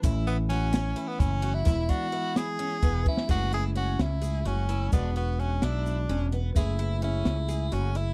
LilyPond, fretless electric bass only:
\new Staff \with { instrumentName = "Fretless electric bass" } { \clef bass \time 7/8 \key fis \minor \tempo 4 = 129 a,,2 r8 fis,,4 | e,,8 r2 e,,8 r8 | fis,,4. cis,4 fis,,4 | e,,4. b,,4 e,,4 |
fis,,4. cis,4 fis,,4 | }